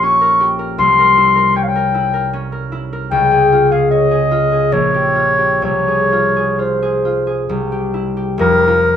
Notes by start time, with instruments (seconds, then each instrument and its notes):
Already playing: harp A#1 G4 A#4 C#5
0.03 harp C#4, clarinet C#6
0.21 harp A#4
0.40 harp G4
0.59 harp A#4
0.78 harp C2, clarinet C6
0.99 harp A#4
1.17 harp E4
1.35 harp A#4
1.56 harp C#5, clarinet G5
1.63 clarinet F5
1.68 clarinet G5
1.76 harp A#4
1.94 harp E4
2.13 harp A#4
2.33 harp C#4
2.52 harp A#4
2.72 harp E4
2.93 harp A#4
3.11 harp C#2, clarinet G5
3.31 harp G#4
3.52 harp F4
3.71 harp G#4, clarinet F5
3.90 harp C#5, clarinet D#5
4.11 harp G#4
4.31 harp F4
4.52 harp G#4
4.72 harp A#1, clarinet C#5
4.94 harp G4
5.15 harp F4
5.38 harp G4
5.62 harp C2, clarinet C#5
5.88 harp G#4
6.12 harp F4
6.36 harp G#4
6.59 harp F4, clarinet C5
6.82 harp G#4
7.05 harp F4
7.27 harp G#4
7.49 harp C2
7.72 harp G4
7.94 harp E4
8.17 harp G4
8.38 harp F1 F2, clarinet A#4
8.68 harp F4